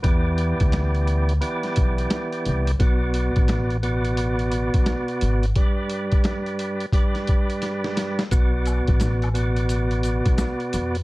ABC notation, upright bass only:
X:1
M:4/4
L:1/16
Q:"Swing 16ths" 1/4=87
K:Bm
V:1 name="Upright bass" clef=bass
E,,3 D,,4- D,, z2 B,,,2 z2 =C,,2 | B,,,3 A,,,8 B,,, z2 ^G,,,2 | z16 | B,,,3 A,,,8 B,,, z2 ^E,,2 |]